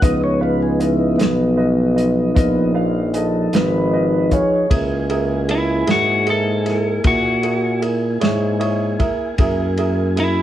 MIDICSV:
0, 0, Header, 1, 6, 480
1, 0, Start_track
1, 0, Tempo, 780234
1, 18, Time_signature, 12, 3, 24, 8
1, 6412, End_track
2, 0, Start_track
2, 0, Title_t, "Tonewheel organ"
2, 0, Program_c, 0, 16
2, 10, Note_on_c, 0, 63, 56
2, 15, Note_on_c, 0, 53, 48
2, 18, Note_on_c, 0, 59, 60
2, 25, Note_on_c, 0, 75, 91
2, 133, Note_off_c, 0, 75, 0
2, 146, Note_on_c, 0, 73, 91
2, 254, Note_off_c, 0, 73, 0
2, 266, Note_on_c, 0, 71, 94
2, 374, Note_off_c, 0, 71, 0
2, 385, Note_on_c, 0, 68, 89
2, 493, Note_off_c, 0, 68, 0
2, 505, Note_on_c, 0, 64, 91
2, 713, Note_on_c, 0, 58, 62
2, 735, Note_off_c, 0, 64, 0
2, 737, Note_off_c, 0, 59, 0
2, 741, Note_off_c, 0, 58, 0
2, 745, Note_on_c, 0, 59, 89
2, 1677, Note_off_c, 0, 59, 0
2, 1928, Note_on_c, 0, 68, 65
2, 1953, Note_off_c, 0, 68, 0
2, 1954, Note_on_c, 0, 69, 91
2, 2179, Note_off_c, 0, 69, 0
2, 2190, Note_on_c, 0, 71, 92
2, 2650, Note_off_c, 0, 71, 0
2, 2659, Note_on_c, 0, 68, 89
2, 2660, Note_on_c, 0, 73, 95
2, 2869, Note_off_c, 0, 63, 0
2, 2872, Note_off_c, 0, 53, 0
2, 2882, Note_off_c, 0, 68, 0
2, 2892, Note_off_c, 0, 73, 0
2, 2894, Note_on_c, 0, 64, 63
2, 2895, Note_on_c, 0, 58, 67
2, 2898, Note_on_c, 0, 80, 64
2, 5749, Note_off_c, 0, 58, 0
2, 5749, Note_off_c, 0, 64, 0
2, 5750, Note_off_c, 0, 80, 0
2, 5763, Note_on_c, 0, 58, 65
2, 5765, Note_on_c, 0, 64, 61
2, 5769, Note_on_c, 0, 80, 66
2, 6412, Note_off_c, 0, 58, 0
2, 6412, Note_off_c, 0, 64, 0
2, 6412, Note_off_c, 0, 80, 0
2, 6412, End_track
3, 0, Start_track
3, 0, Title_t, "Upright piano"
3, 0, Program_c, 1, 0
3, 10, Note_on_c, 1, 65, 60
3, 12, Note_on_c, 1, 71, 56
3, 16, Note_on_c, 1, 75, 73
3, 194, Note_off_c, 1, 65, 0
3, 195, Note_off_c, 1, 71, 0
3, 197, Note_off_c, 1, 75, 0
3, 249, Note_on_c, 1, 65, 57
3, 251, Note_on_c, 1, 71, 51
3, 254, Note_on_c, 1, 77, 59
3, 433, Note_off_c, 1, 65, 0
3, 435, Note_off_c, 1, 71, 0
3, 436, Note_off_c, 1, 77, 0
3, 488, Note_on_c, 1, 65, 52
3, 490, Note_on_c, 1, 71, 47
3, 493, Note_on_c, 1, 75, 53
3, 673, Note_off_c, 1, 65, 0
3, 674, Note_off_c, 1, 71, 0
3, 675, Note_off_c, 1, 75, 0
3, 723, Note_on_c, 1, 65, 58
3, 727, Note_on_c, 1, 71, 51
3, 731, Note_on_c, 1, 75, 56
3, 910, Note_off_c, 1, 65, 0
3, 912, Note_off_c, 1, 71, 0
3, 914, Note_off_c, 1, 75, 0
3, 962, Note_on_c, 1, 65, 54
3, 967, Note_on_c, 1, 71, 54
3, 970, Note_on_c, 1, 75, 64
3, 1150, Note_off_c, 1, 65, 0
3, 1152, Note_off_c, 1, 71, 0
3, 1154, Note_off_c, 1, 75, 0
3, 1200, Note_on_c, 1, 65, 52
3, 1204, Note_on_c, 1, 71, 49
3, 1210, Note_on_c, 1, 75, 61
3, 1389, Note_off_c, 1, 65, 0
3, 1391, Note_off_c, 1, 71, 0
3, 1394, Note_off_c, 1, 75, 0
3, 1441, Note_on_c, 1, 65, 66
3, 1447, Note_on_c, 1, 71, 53
3, 1451, Note_on_c, 1, 75, 72
3, 1630, Note_off_c, 1, 65, 0
3, 1633, Note_off_c, 1, 71, 0
3, 1634, Note_off_c, 1, 75, 0
3, 1687, Note_on_c, 1, 65, 68
3, 1690, Note_on_c, 1, 71, 57
3, 1693, Note_on_c, 1, 77, 69
3, 1872, Note_off_c, 1, 65, 0
3, 1874, Note_off_c, 1, 71, 0
3, 1876, Note_off_c, 1, 77, 0
3, 1931, Note_on_c, 1, 65, 56
3, 1931, Note_on_c, 1, 71, 49
3, 1938, Note_on_c, 1, 75, 60
3, 2114, Note_off_c, 1, 65, 0
3, 2115, Note_off_c, 1, 71, 0
3, 2118, Note_off_c, 1, 75, 0
3, 2173, Note_on_c, 1, 65, 54
3, 2176, Note_on_c, 1, 71, 50
3, 2177, Note_on_c, 1, 75, 57
3, 2355, Note_off_c, 1, 65, 0
3, 2357, Note_off_c, 1, 71, 0
3, 2358, Note_off_c, 1, 75, 0
3, 2413, Note_on_c, 1, 65, 54
3, 2418, Note_on_c, 1, 71, 54
3, 2420, Note_on_c, 1, 75, 59
3, 2595, Note_off_c, 1, 65, 0
3, 2598, Note_off_c, 1, 71, 0
3, 2599, Note_off_c, 1, 75, 0
3, 2650, Note_on_c, 1, 65, 56
3, 2654, Note_on_c, 1, 71, 50
3, 2656, Note_on_c, 1, 77, 56
3, 2834, Note_off_c, 1, 65, 0
3, 2836, Note_off_c, 1, 71, 0
3, 2837, Note_off_c, 1, 77, 0
3, 2887, Note_on_c, 1, 64, 58
3, 2893, Note_on_c, 1, 68, 53
3, 2897, Note_on_c, 1, 70, 61
3, 3072, Note_off_c, 1, 64, 0
3, 3075, Note_off_c, 1, 68, 0
3, 3077, Note_off_c, 1, 70, 0
3, 3134, Note_on_c, 1, 64, 64
3, 3140, Note_on_c, 1, 68, 60
3, 3140, Note_on_c, 1, 70, 73
3, 3316, Note_off_c, 1, 64, 0
3, 3319, Note_off_c, 1, 68, 0
3, 3319, Note_off_c, 1, 70, 0
3, 3373, Note_on_c, 1, 64, 47
3, 3374, Note_on_c, 1, 68, 43
3, 3380, Note_on_c, 1, 70, 50
3, 3555, Note_off_c, 1, 64, 0
3, 3555, Note_off_c, 1, 68, 0
3, 3559, Note_off_c, 1, 70, 0
3, 3605, Note_on_c, 1, 64, 52
3, 3610, Note_on_c, 1, 68, 48
3, 3614, Note_on_c, 1, 70, 53
3, 3791, Note_off_c, 1, 64, 0
3, 3794, Note_off_c, 1, 68, 0
3, 3796, Note_off_c, 1, 70, 0
3, 3849, Note_on_c, 1, 64, 53
3, 3855, Note_on_c, 1, 68, 47
3, 3857, Note_on_c, 1, 70, 57
3, 4033, Note_off_c, 1, 64, 0
3, 4036, Note_off_c, 1, 68, 0
3, 4037, Note_off_c, 1, 70, 0
3, 4089, Note_on_c, 1, 64, 50
3, 4093, Note_on_c, 1, 68, 45
3, 4097, Note_on_c, 1, 70, 53
3, 4273, Note_off_c, 1, 64, 0
3, 4275, Note_off_c, 1, 68, 0
3, 4277, Note_off_c, 1, 70, 0
3, 4326, Note_on_c, 1, 64, 48
3, 4331, Note_on_c, 1, 68, 45
3, 4335, Note_on_c, 1, 70, 55
3, 4511, Note_off_c, 1, 64, 0
3, 4513, Note_off_c, 1, 68, 0
3, 4515, Note_off_c, 1, 70, 0
3, 4567, Note_on_c, 1, 64, 53
3, 4571, Note_on_c, 1, 68, 44
3, 4574, Note_on_c, 1, 70, 55
3, 4751, Note_off_c, 1, 64, 0
3, 4753, Note_off_c, 1, 68, 0
3, 4755, Note_off_c, 1, 70, 0
3, 4806, Note_on_c, 1, 64, 46
3, 4811, Note_on_c, 1, 68, 47
3, 4813, Note_on_c, 1, 70, 57
3, 4991, Note_off_c, 1, 64, 0
3, 4993, Note_off_c, 1, 68, 0
3, 4995, Note_off_c, 1, 70, 0
3, 5045, Note_on_c, 1, 64, 62
3, 5048, Note_on_c, 1, 68, 55
3, 5053, Note_on_c, 1, 73, 64
3, 5230, Note_off_c, 1, 64, 0
3, 5232, Note_off_c, 1, 68, 0
3, 5234, Note_off_c, 1, 73, 0
3, 5286, Note_on_c, 1, 64, 64
3, 5288, Note_on_c, 1, 68, 57
3, 5293, Note_on_c, 1, 73, 65
3, 5471, Note_off_c, 1, 64, 0
3, 5471, Note_off_c, 1, 68, 0
3, 5474, Note_off_c, 1, 73, 0
3, 5530, Note_on_c, 1, 64, 65
3, 5534, Note_on_c, 1, 68, 52
3, 5539, Note_on_c, 1, 70, 72
3, 5713, Note_off_c, 1, 64, 0
3, 5715, Note_off_c, 1, 68, 0
3, 5717, Note_off_c, 1, 70, 0
3, 5774, Note_on_c, 1, 64, 74
3, 5779, Note_on_c, 1, 68, 62
3, 5781, Note_on_c, 1, 70, 78
3, 5954, Note_off_c, 1, 64, 0
3, 5957, Note_off_c, 1, 68, 0
3, 5958, Note_off_c, 1, 70, 0
3, 6016, Note_on_c, 1, 64, 60
3, 6021, Note_on_c, 1, 68, 60
3, 6026, Note_on_c, 1, 70, 69
3, 6195, Note_off_c, 1, 64, 0
3, 6198, Note_off_c, 1, 68, 0
3, 6200, Note_off_c, 1, 70, 0
3, 6251, Note_on_c, 1, 64, 51
3, 6254, Note_on_c, 1, 68, 45
3, 6261, Note_on_c, 1, 70, 55
3, 6412, Note_off_c, 1, 64, 0
3, 6412, Note_off_c, 1, 68, 0
3, 6412, Note_off_c, 1, 70, 0
3, 6412, End_track
4, 0, Start_track
4, 0, Title_t, "Lead electric guitar"
4, 0, Program_c, 2, 29
4, 3389, Note_on_c, 2, 64, 82
4, 3616, Note_off_c, 2, 64, 0
4, 3635, Note_on_c, 2, 66, 74
4, 3859, Note_off_c, 2, 66, 0
4, 3877, Note_on_c, 2, 69, 71
4, 4332, Note_off_c, 2, 69, 0
4, 4350, Note_on_c, 2, 66, 88
4, 4809, Note_off_c, 2, 66, 0
4, 6274, Note_on_c, 2, 64, 92
4, 6412, Note_off_c, 2, 64, 0
4, 6412, End_track
5, 0, Start_track
5, 0, Title_t, "Tuba"
5, 0, Program_c, 3, 58
5, 13, Note_on_c, 3, 37, 86
5, 714, Note_off_c, 3, 37, 0
5, 739, Note_on_c, 3, 35, 93
5, 1437, Note_off_c, 3, 35, 0
5, 1454, Note_on_c, 3, 34, 84
5, 2154, Note_off_c, 3, 34, 0
5, 2172, Note_on_c, 3, 32, 93
5, 2713, Note_off_c, 3, 32, 0
5, 2896, Note_on_c, 3, 37, 80
5, 3595, Note_off_c, 3, 37, 0
5, 3614, Note_on_c, 3, 44, 92
5, 4313, Note_off_c, 3, 44, 0
5, 4334, Note_on_c, 3, 46, 79
5, 5033, Note_off_c, 3, 46, 0
5, 5057, Note_on_c, 3, 44, 90
5, 5594, Note_off_c, 3, 44, 0
5, 5776, Note_on_c, 3, 42, 78
5, 6412, Note_off_c, 3, 42, 0
5, 6412, End_track
6, 0, Start_track
6, 0, Title_t, "Drums"
6, 14, Note_on_c, 9, 42, 77
6, 15, Note_on_c, 9, 36, 101
6, 75, Note_off_c, 9, 42, 0
6, 76, Note_off_c, 9, 36, 0
6, 495, Note_on_c, 9, 42, 64
6, 556, Note_off_c, 9, 42, 0
6, 734, Note_on_c, 9, 42, 71
6, 746, Note_on_c, 9, 38, 104
6, 796, Note_off_c, 9, 42, 0
6, 808, Note_off_c, 9, 38, 0
6, 1217, Note_on_c, 9, 42, 59
6, 1279, Note_off_c, 9, 42, 0
6, 1455, Note_on_c, 9, 36, 110
6, 1455, Note_on_c, 9, 42, 75
6, 1516, Note_off_c, 9, 36, 0
6, 1516, Note_off_c, 9, 42, 0
6, 1931, Note_on_c, 9, 42, 58
6, 1992, Note_off_c, 9, 42, 0
6, 2172, Note_on_c, 9, 42, 76
6, 2184, Note_on_c, 9, 38, 105
6, 2233, Note_off_c, 9, 42, 0
6, 2245, Note_off_c, 9, 38, 0
6, 2654, Note_on_c, 9, 42, 58
6, 2655, Note_on_c, 9, 36, 72
6, 2715, Note_off_c, 9, 42, 0
6, 2717, Note_off_c, 9, 36, 0
6, 2896, Note_on_c, 9, 36, 93
6, 2897, Note_on_c, 9, 51, 79
6, 2958, Note_off_c, 9, 36, 0
6, 2958, Note_off_c, 9, 51, 0
6, 3135, Note_on_c, 9, 51, 55
6, 3197, Note_off_c, 9, 51, 0
6, 3376, Note_on_c, 9, 51, 66
6, 3437, Note_off_c, 9, 51, 0
6, 3613, Note_on_c, 9, 51, 76
6, 3625, Note_on_c, 9, 38, 98
6, 3675, Note_off_c, 9, 51, 0
6, 3686, Note_off_c, 9, 38, 0
6, 3855, Note_on_c, 9, 51, 55
6, 3916, Note_off_c, 9, 51, 0
6, 4096, Note_on_c, 9, 51, 54
6, 4108, Note_on_c, 9, 38, 28
6, 4158, Note_off_c, 9, 51, 0
6, 4170, Note_off_c, 9, 38, 0
6, 4331, Note_on_c, 9, 51, 74
6, 4334, Note_on_c, 9, 36, 104
6, 4393, Note_off_c, 9, 51, 0
6, 4396, Note_off_c, 9, 36, 0
6, 4572, Note_on_c, 9, 51, 56
6, 4633, Note_off_c, 9, 51, 0
6, 4813, Note_on_c, 9, 51, 55
6, 4874, Note_off_c, 9, 51, 0
6, 5053, Note_on_c, 9, 51, 72
6, 5064, Note_on_c, 9, 38, 93
6, 5114, Note_off_c, 9, 51, 0
6, 5126, Note_off_c, 9, 38, 0
6, 5295, Note_on_c, 9, 51, 53
6, 5356, Note_off_c, 9, 51, 0
6, 5534, Note_on_c, 9, 51, 51
6, 5536, Note_on_c, 9, 36, 67
6, 5596, Note_off_c, 9, 51, 0
6, 5597, Note_off_c, 9, 36, 0
6, 5771, Note_on_c, 9, 51, 70
6, 5775, Note_on_c, 9, 36, 99
6, 5833, Note_off_c, 9, 51, 0
6, 5837, Note_off_c, 9, 36, 0
6, 6013, Note_on_c, 9, 51, 53
6, 6075, Note_off_c, 9, 51, 0
6, 6257, Note_on_c, 9, 51, 62
6, 6318, Note_off_c, 9, 51, 0
6, 6412, End_track
0, 0, End_of_file